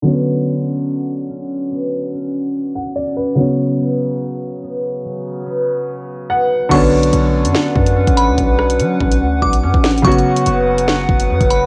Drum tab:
CC |------------------------------------------------|------------------------------------------------|------------------------------------------------|------------------------------------------------|
HH |------------------------------------------------|------------------------------------------------|------------------------------------------------|------------------------------------------------|
SD |------------------------------------------------|------------------------------------------------|------------------------------------------------|------------------------------------------------|
BD |------------------------------------------------|------------------------------------------------|------------------------------------------------|------------------------------------------------|

CC |x-----------------------------------------------|------------------------------------------------|------------------------------------------------|
HH |x--------x--x--------x-----------x-----x--x-----|x--------x--x--------x-----------x--------x-x-x-|x-x-x----x--x--------x-----------x-----x--x-----|
SD |------------------------o-----------------------|------r-----------------------------------o-----|------------------------o-----------------------|
BD |o-----------------------------o--------o--------|o-----------------o-----------o--------o--------|o-----------------------------o--------o--------|